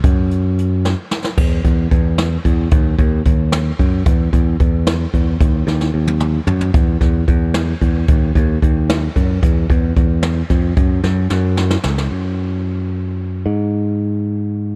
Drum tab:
CC |----------|x---------|----------|----------|
HH |x-x-x-----|--x-x-x-x-|x-x-x-x-x-|x-x-x-x-x-|
SD |------o-oo|------o---|------o---|------o---|
T1 |----------|----------|----------|----------|
T2 |----------|----------|----------|----------|
FT |----------|----------|----------|----------|
BD |o---------|o-o-o---o-|o-o-o---o-|o-o-o---o-|

CC |----------|----------|----------|----------|
HH |x---------|x-x-x-x-x-|x-x-x-x-x-|x-x-x-x-x-|
SD |--oo------|--o---o---|------o---|------o-o-|
T1 |-----o----|----------|----------|----------|
T2 |------o---|----------|----------|----------|
FT |--------oo|----------|----------|----------|
BD |o---------|o-o-o---o-|o-o-o---o-|o-o-o---o-|

CC |----------|----------|----------|
HH |x---------|----------|----------|
SD |--o-o-oooo|----------|----------|
T1 |----------|----------|----------|
T2 |----------|----------|----------|
FT |----------|----------|----------|
BD |o---------|----------|----------|